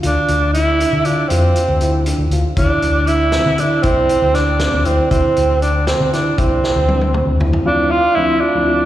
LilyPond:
<<
  \new Staff \with { instrumentName = "Grand piano" } { \time 5/8 \key d \minor \tempo 4 = 118 f'4 e'8 d'8 f'8 | f'4 e'8 d'8 f'8 | e'4 d'8 c'8 e'8 | e'4 d'8 c'8 e'8 |
e'4 d'8 c'8 e'8 | e'4 d'8 c'8 e'8 | f'4 d'8 f'8 f'8 | }
  \new Staff \with { instrumentName = "Tenor saxophone" } { \time 5/8 \key d \minor d'4 e'4 d'8 | c'4. r4 | d'4 e'4 d'8 | c'4 d'4 c'8 |
c'4 d'8 c'8 d'8 | c'2 r8 | d'8 f'8 e'8 d'4 | }
  \new Staff \with { instrumentName = "Tine electric piano" } { \clef bass \time 5/8 \key d \minor r2 r8 | r2 r8 | r2 r8 | r2 r8 |
r2 r8 | r2 r8 | <d, f c' e'>8 r8 <d, f c' e'>8 r16 <d, f c' e'>8. | }
  \new Staff \with { instrumentName = "Fingered electric bass" } { \clef bass \time 5/8 \key d \minor d,16 r16 d,4~ d,16 d8 r16 | f,8 r16 d,4 d,16 d,16 r16 | d,16 r16 d,4~ d,16 d8 r16 | c,8 r16 d,4 d,16 d,16 r16 |
d,16 r16 d,4~ d,16 d8 r16 | c,8 r16 d,4 d,16 d,16 r16 | r2 r8 | }
  \new DrumStaff \with { instrumentName = "Drums" } \drummode { \time 5/8 hh8 hh8 hh8 hh8 hh8 | hh8 hh8 hh8 hh8 hh8 | <hh bd>8 hh8 hh8 <hh sn>8 hh8 | <hh bd>8 hh8 <hh sn>8 <hh sn>8 hh8 |
<hh bd>8 hh8 hh8 <hh sn>8 <hh sn>8 | <hh bd>8 sn8 tommh16 tommh16 toml8 tomfh16 tomfh16 | r4. r4 | }
>>